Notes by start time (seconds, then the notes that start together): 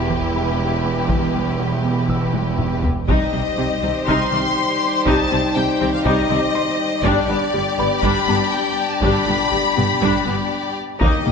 Already playing: E1 E2 E4 G4 B4 G5
0.10 E3, taiko
0.35 G3 B4 B5
0.85 B3
1.09 E3, taiko
1.35 G3
1.60 B3
1.85 B3
2.09 E3 E6, taiko
2.34 G3, taiko high
2.58 taiko low-mid
2.83 B3, taiko low
3.08 C2 C3 G3 D#4 G4 C5 D#5, taiko
3.33 C2 C3 G3 C4
3.57 C2 C3 G3 C4
3.82 C2 C3 D#3 G3 C4
4.07 C2 C3 G3 D#4 C6 F6, taiko
4.32 C2 C3 D#3 G3 C4
5.06 C2 C3 G3 D#4 A5, taiko
5.31 C2 C3 G3 C4
5.56 C2 C3 G3 C4 G5
5.81 C2 C3 D#3 G3 C4
5.94 F5
6.05 C2 C3 G3 D#4 D#5 D6, taiko
6.30 C2 C3 D#3 G3 C4
6.55 C6
7.04 G1 G2 G3 D4 G4 D5 G5, taiko
7.29 G1 G2 G3 B3 D4
7.54 G1 G2 G3 G4
7.78 G1 G2 G3 B3 B4 B5
8.03 G1 G2 G3 D4 B5, taiko
8.28 G1 G2 G3 B3 A5
8.53 G5
8.92 A5
9.02 G1 G2 G3 D4 B5, taiko
9.28 G1 G2 G3 B3 D4, taiko mid
9.52 G1 G2 G3 G4
9.76 G1 G2 G3 B3, taiko mid
10.01 G1 G2 G3 D4, taiko
10.26 G1 G2 G3 B3
11.01 D#2 D#3 G3 A#3 D#4 G4 D#5, taiko
11.26 D#2 A#3, taiko mid